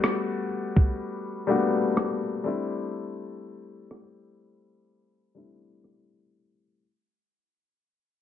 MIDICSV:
0, 0, Header, 1, 3, 480
1, 0, Start_track
1, 0, Tempo, 967742
1, 1457, Time_signature, 4, 2, 24, 8
1, 4073, End_track
2, 0, Start_track
2, 0, Title_t, "Grand piano"
2, 0, Program_c, 0, 0
2, 0, Control_c, 0, 64, 127
2, 0, Note_on_c, 0, 55, 78
2, 0, Note_on_c, 0, 57, 72
2, 0, Note_on_c, 0, 59, 71
2, 0, Note_on_c, 0, 62, 74
2, 0, Note_on_c, 0, 66, 90
2, 220, Note_off_c, 0, 55, 0
2, 222, Note_off_c, 0, 57, 0
2, 224, Note_off_c, 0, 59, 0
2, 227, Note_off_c, 0, 62, 0
2, 229, Note_off_c, 0, 66, 0
2, 729, Note_on_c, 0, 55, 81
2, 733, Note_on_c, 0, 57, 76
2, 737, Note_on_c, 0, 58, 61
2, 742, Note_on_c, 0, 62, 74
2, 746, Note_on_c, 0, 66, 90
2, 769, Note_off_c, 0, 58, 0
2, 770, Note_on_c, 0, 59, 77
2, 1202, Note_off_c, 0, 55, 0
2, 1205, Note_off_c, 0, 57, 0
2, 1209, Note_on_c, 0, 55, 86
2, 1213, Note_on_c, 0, 57, 79
2, 1215, Note_off_c, 0, 62, 0
2, 1218, Note_on_c, 0, 60, 78
2, 1221, Note_off_c, 0, 66, 0
2, 1222, Note_on_c, 0, 62, 80
2, 1223, Control_c, 0, 64, 0
2, 1227, Note_on_c, 0, 64, 91
2, 1233, Note_off_c, 0, 59, 0
2, 1324, Control_c, 0, 64, 127
2, 1981, Note_off_c, 0, 55, 0
2, 1983, Note_off_c, 0, 57, 0
2, 1985, Note_off_c, 0, 60, 0
2, 1988, Note_off_c, 0, 62, 0
2, 1990, Note_off_c, 0, 64, 0
2, 2651, Note_on_c, 0, 55, 79
2, 2655, Note_on_c, 0, 57, 74
2, 2661, Note_on_c, 0, 60, 71
2, 2664, Note_on_c, 0, 62, 74
2, 2668, Note_on_c, 0, 64, 90
2, 3169, Note_off_c, 0, 55, 0
2, 3170, Note_off_c, 0, 57, 0
2, 3173, Note_off_c, 0, 60, 0
2, 3175, Note_off_c, 0, 62, 0
2, 3177, Note_off_c, 0, 64, 0
2, 3384, Control_c, 0, 64, 0
2, 4073, End_track
3, 0, Start_track
3, 0, Title_t, "Drums"
3, 18, Note_on_c, 9, 37, 99
3, 68, Note_off_c, 9, 37, 0
3, 379, Note_on_c, 9, 36, 75
3, 429, Note_off_c, 9, 36, 0
3, 977, Note_on_c, 9, 37, 117
3, 1027, Note_off_c, 9, 37, 0
3, 1939, Note_on_c, 9, 37, 95
3, 1988, Note_off_c, 9, 37, 0
3, 2898, Note_on_c, 9, 37, 109
3, 2948, Note_off_c, 9, 37, 0
3, 4073, End_track
0, 0, End_of_file